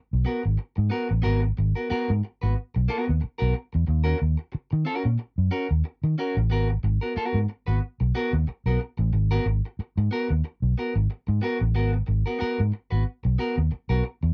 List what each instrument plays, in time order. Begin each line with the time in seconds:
0.13 fingered electric bass B1
0.25 clean electric guitar B3 F#4 A#4
0.43 fingered electric bass G#1, muted clean electric guitar stroke
0.58 muted clean electric guitar stroke
0.76 fingered electric bass G#2, muted clean electric guitar stroke
0.90 clean electric guitar B3 F#4 A#4
1.09 fingered electric bass A1, muted clean electric guitar stroke
1.22 fingered electric bass G#1, clean electric guitar B3 F#4 A#4
1.42 muted clean electric guitar stroke
1.57 fingered electric bass G#1, muted clean electric guitar stroke
1.75 clean electric guitar B3 F#4 A#4
1.90 clean electric guitar B3 F#4 A#4, muted fingered electric bass stroke
2.10 fingered electric bass G#2
2.24 muted clean electric guitar stroke
2.42 fingered electric bass G#1, clean electric guitar B3 F#4 B4
2.75 fingered electric bass B1, muted clean electric guitar stroke
2.88 clean electric guitar B3 F#4 A#4
3.06 fingered electric bass D#2, muted clean electric guitar stroke
3.20 muted clean electric guitar stroke, muted fingered electric bass stroke
3.38 fingered electric bass B1, clean electric guitar B3 F#4 A#4
3.54 muted clean electric guitar stroke
3.73 fingered electric bass E2, muted clean electric guitar stroke
3.87 fingered electric bass D#2, muted clean electric guitar stroke
4.04 clean electric guitar C#4 F#4 A#4
4.18 fingered electric bass D#2, muted clean electric guitar stroke
4.37 muted clean electric guitar stroke
4.52 muted clean electric guitar stroke, muted fingered electric bass stroke
4.71 fingered electric bass D#3, muted clean electric guitar stroke
4.85 clean electric guitar C#4 F#4 A#4
5.04 fingered electric bass A#2, muted clean electric guitar stroke
5.18 muted clean electric guitar stroke
5.38 fingered electric bass F#2
5.51 clean electric guitar C#4 F#4 A#4
5.71 fingered electric bass D#2
5.84 muted clean electric guitar stroke
6.04 fingered electric bass D#3, muted clean electric guitar stroke
6.18 clean electric guitar C#4 F#4 A#4
6.37 fingered electric bass A1
6.50 fingered electric bass G#1, clean electric guitar B3 F#4 A#4
6.69 muted clean electric guitar stroke
6.83 fingered electric bass G#1, muted clean electric guitar stroke
7.01 clean electric guitar B3 F#4 A#4
7.16 clean electric guitar B3 F#4 A#4, muted fingered electric bass stroke
7.34 fingered electric bass G#2
7.49 muted clean electric guitar stroke
7.67 fingered electric bass G#1, clean electric guitar B3 F#4 B4
8.00 fingered electric bass B1, muted clean electric guitar stroke
8.15 clean electric guitar B3 F#4 A#4
8.33 fingered electric bass D#2, muted clean electric guitar stroke
8.47 muted clean electric guitar stroke, muted fingered electric bass stroke
8.66 fingered electric bass B1, clean electric guitar B3 F#4 A#4
8.80 muted clean electric guitar stroke
8.97 fingered electric bass A1, muted clean electric guitar stroke
9.13 fingered electric bass G#1, muted clean electric guitar stroke
9.31 clean electric guitar B3 F#4 A#4
9.46 fingered electric bass G#1, muted clean electric guitar stroke
9.65 muted clean electric guitar stroke
9.79 muted fingered electric bass stroke, muted clean electric guitar stroke
9.97 fingered electric bass G#2, muted clean electric guitar stroke
10.11 clean electric guitar B3 F#4 A#4
10.29 fingered electric bass D#2, muted clean electric guitar stroke
10.44 muted clean electric guitar stroke
10.62 fingered electric bass B1
10.78 clean electric guitar B3 F#4 A#4
10.96 fingered electric bass G#1, muted clean electric guitar stroke
11.10 muted clean electric guitar stroke
11.27 fingered electric bass G#2, muted clean electric guitar stroke
11.42 clean electric guitar B3 F#4 A#4
11.60 fingered electric bass A1, muted clean electric guitar stroke
11.75 fingered electric bass G#1, clean electric guitar B3 F#4 A#4
11.93 muted clean electric guitar stroke
12.07 fingered electric bass G#1, muted clean electric guitar stroke
12.26 clean electric guitar B3 F#4 A#4
12.39 clean electric guitar B3 F#4 A#4, muted fingered electric bass stroke
12.60 fingered electric bass G#2
12.72 muted clean electric guitar stroke
12.91 fingered electric bass G#1, clean electric guitar B3 F#4 B4
13.24 fingered electric bass B1, muted clean electric guitar stroke
13.38 clean electric guitar B3 F#4 A#4
13.57 fingered electric bass D#2, muted clean electric guitar stroke
13.71 muted clean electric guitar stroke, muted fingered electric bass stroke
13.89 fingered electric bass B1, clean electric guitar B3 F#4 A#4
14.04 muted clean electric guitar stroke
14.23 fingered electric bass E2, muted clean electric guitar stroke